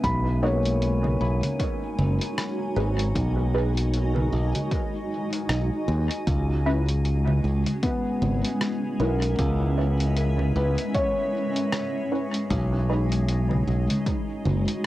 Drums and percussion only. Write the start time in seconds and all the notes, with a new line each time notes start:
0.04 kick, closed hi-hat
0.65 closed hi-hat
0.82 closed hi-hat
1.04 low conga
1.43 closed hi-hat, low conga
1.60 kick, closed hi-hat
1.99 low conga
2.21 closed hi-hat
2.38 cross-stick, closed hi-hat
2.99 closed hi-hat
3.16 kick, closed hi-hat
3.77 closed hi-hat
3.94 closed hi-hat
4.16 low conga
4.55 closed hi-hat, low conga
4.71 kick, closed hi-hat
5.33 closed hi-hat
5.49 cross-stick, closed hi-hat
6.11 closed hi-hat
6.27 kick, closed hi-hat
6.89 closed hi-hat
7.05 closed hi-hat
7.28 low conga
7.66 closed hi-hat, low conga
7.83 kick, closed hi-hat
8.22 low conga
8.45 closed hi-hat
8.61 cross-stick, closed hi-hat
9.22 closed hi-hat
9.39 kick, closed hi-hat
10.00 closed hi-hat
10.17 closed hi-hat
10.39 low conga
10.78 closed hi-hat
10.95 kick, closed hi-hat
11.56 closed hi-hat
11.72 cross-stick, closed hi-hat
12.34 closed hi-hat
12.50 kick, closed hi-hat
13.12 closed hi-hat
13.29 closed hi-hat
13.51 low conga
13.90 closed hi-hat, low conga
14.06 kick, closed hi-hat
14.45 low conga
14.68 closed hi-hat